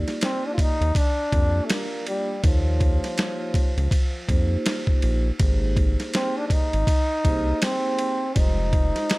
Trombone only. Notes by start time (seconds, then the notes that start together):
0.24 C4
0.47 D4
0.54 F4
0.60 D#4
0.97 D4
1.65 A3
1.71 A#3
2.08 G3
2.45 F3
6.15 C4
6.38 D4
6.48 D4
6.53 D#4
7.63 C4
8.38 D#4